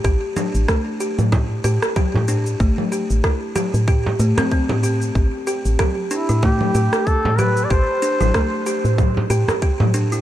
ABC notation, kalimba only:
X:1
M:4/4
L:1/16
Q:"Swing 16ths" 1/4=94
K:Am
V:1 name="Kalimba"
G2 D z A, z G2 E z G2 G2 D z | A, z G2 E z G2 G z A, C C G G z | z2 G2 G2 D E A, z G4 G2 | G2 D E A, z G4 G2 G2 D E |]